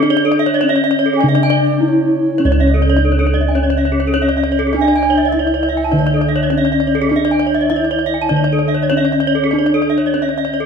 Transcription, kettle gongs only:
0.00 0.59 D3 soft
0.00 0.62 D4 medium
0.63 0.71 D4 soft
1.24 2.95 C#3 medium
1.82 1.90 D4 soft
2.40 4.12 C#4 medium
2.45 5.91 C#2 medium
2.99 3.07 D4 soft
4.16 4.24 D4 soft
4.74 5.32 D4 medium
5.34 5.42 D4 soft
5.93 7.65 D3 medium
6.52 6.60 D4 soft
7.11 7.70 D4 medium
7.71 7.79 D4 soft
8.31 10.11 D3 medium
8.91 8.99 D4 soft
9.53 10.14 D4 medium
10.16 10.24 D4 soft

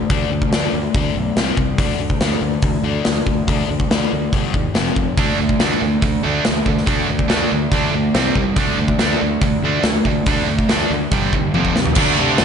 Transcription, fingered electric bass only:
0.10 0.24 D2 medium
0.30 0.45 D2 medium
0.50 0.65 D2 medium
0.73 0.87 D2 medium
0.95 1.09 D2 medium
1.16 1.30 B1 medium
1.36 1.50 C2 medium
1.57 1.71 C2 medium
1.78 1.93 D2 medium
1.99 2.13 D2 medium
2.20 2.34 D2 medium
2.41 2.56 D2 medium
2.63 2.77 D2 medium
2.83 2.98 D2 medium
3.06 3.20 D2 medium
3.26 3.41 D2 medium
3.47 3.62 D2 medium
3.69 3.83 D2 medium
3.90 4.05 D2 medium
4.13 4.27 D2 medium
4.32 4.47 G1 medium
4.54 4.69 D#2 medium
4.76 4.90 F1 medium
4.97 5.11 F1 medium
5.17 5.32 D2 medium
5.39 5.53 D2 medium
5.60 5.75 D2 medium
5.82 5.96 D2 medium
6.02 6.17 D2 medium
6.25 6.39 D2 medium
6.48 6.61 D2 medium
6.66 6.81 D2 medium
6.87 7.01 D2 medium
7.10 7.24 D2 medium
7.30 7.44 D2 medium
7.52 7.66 D2 medium
7.72 7.86 D2 medium
7.94 8.08 D2 medium
8.15 8.29 C2 medium
8.35 8.50 C2 medium
8.56 8.71 D2 medium
8.78 8.92 D2 medium
9.01 9.15 D2 medium
9.21 9.36 D2 medium
9.41 9.56 D2 medium
9.63 9.77 D2 medium
9.84 9.98 D2 medium
10.05 10.19 D2 medium
10.27 10.41 D2 medium
10.47 10.62 D2 medium
10.69 10.84 D2 medium
10.90 11.05 D2 medium
11.12 11.27 G1 medium
11.33 11.47 D#2 medium
11.53 11.68 F1 medium
11.76 11.90 D#2 medium
11.97 12.15 D2 medium
12.19 12.37 C3 medium
12.40 12.45 F1 medium

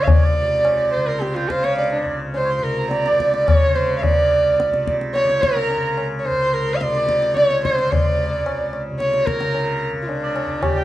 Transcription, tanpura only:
0.00 2.04 C#2 medium
0.00 0.41 C3 medium
0.00 0.97 C#3 medium
0.41 2.58 C3 medium
0.97 1.50 C#3 medium
1.50 3.12 C#3 medium
2.05 4.17 C#2 medium
2.58 4.71 C3 medium
3.12 3.65 C#3 medium
3.65 5.24 C#3 medium
4.18 6.29 C#2 medium
4.71 6.80 C3 medium
5.24 5.76 C#3 medium
5.76 7.33 C#3 medium
6.30 8.38 C#2 medium
6.81 8.89 C3 medium
7.33 7.86 C#3 medium
7.86 9.42 C#3 medium
8.39 10.45 C#2 medium
8.90 10.84 C3 medium
9.42 9.93 C#3 medium
9.93 10.84 C#3 medium
10.46 10.84 C#2 medium

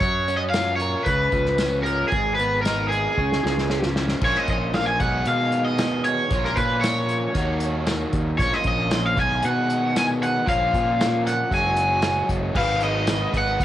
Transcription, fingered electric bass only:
0.01 0.95 F#2 medium
1.06 1.30 C#2 medium
1.32 2.03 C#2 medium
2.13 3.06 G#1 medium
3.17 3.41 C#2 medium
3.44 4.14 C#2 medium
4.22 4.34 A#1 medium
4.48 5.00 A#1 medium
5.00 5.24 B1 medium
5.27 6.20 B2 medium
6.31 6.54 A#1 loud
6.57 7.27 A#2 loud
7.35 8.05 D#2 medium
8.13 8.37 D#2 medium
8.39 8.51 A#1 loud
8.65 9.17 A#1 medium
9.17 9.41 B1 medium
9.44 10.37 B2 medium
10.48 10.71 A#1 loud
10.74 11.43 A#2 medium
11.51 12.21 F#1 medium
12.29 12.52 F#1 medium
12.55 13.25 G#1 loud
13.34 13.57 G#1 loud
13.60 13.65 D#2 loud

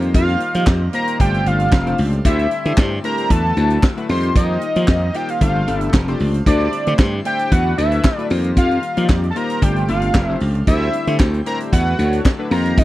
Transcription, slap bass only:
0.15 0.35 F2 loud
0.55 0.65 F3 medium
0.67 0.88 F2 loud
1.20 1.41 G1 medium
1.46 1.67 G1 medium
1.73 1.93 F1 loud
1.99 2.19 C#2 loud
2.25 2.46 D2 loud
2.66 2.75 D3 loud
2.78 2.98 G2 loud
3.30 3.51 E2 loud
3.57 3.77 D2 medium
4.09 4.30 F2 loud
4.36 4.56 F2 loud
4.76 4.86 F3 medium
4.88 5.09 F2 loud
5.41 5.62 G1 loud
5.67 5.88 G1 loud
5.94 6.14 F1 loud
6.20 6.41 C#2 loud
6.47 6.67 D2 loud
6.87 6.97 D3 medium
6.99 7.19 G2 loud
7.52 7.72 E2 loud
7.78 7.99 D2 medium
8.31 8.51 F2 loud
8.57 8.77 F2 loud
8.97 9.07 F3 medium
9.09 9.30 F2 loud
9.62 9.83 G1 loud
9.89 10.09 G1 medium
10.15 10.35 F1 loud
10.41 10.62 C#2 medium
10.67 10.88 D2 loud
11.07 11.17 D3 medium
11.20 11.40 D2 medium
11.73 11.93 E2 medium
11.99 12.19 D2 medium
12.51 12.72 F2 loud
12.78 12.84 F2 loud

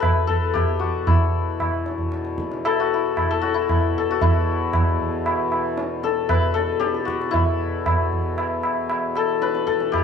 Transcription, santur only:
0.00 1.07 E4 medium
0.00 0.60 F#4 medium
0.00 0.27 A4 medium
0.00 2.73 B4 loud
0.27 2.65 A4 medium
0.54 0.85 G4 medium
0.79 2.79 F#4 medium
1.07 2.93 E4 medium
2.65 3.30 A4 loud
2.80 3.41 F#4 medium
2.94 3.54 E4 medium
3.31 3.97 A4 loud
3.41 4.10 F#4 medium
3.54 4.22 E4 medium
3.98 6.03 A4 medium
4.11 6.86 F#4 medium
4.22 7.30 E4 medium
6.04 6.54 A4 medium
6.29 9.02 B4 loud
6.54 9.16 A4 loud
6.80 7.11 G4 loud
7.05 9.98 F#4 medium
7.31 10.04 E4 medium
9.16 9.66 A4 medium
9.42 10.04 B4 loud
9.67 10.04 A4 loud
9.92 10.04 G4 loud

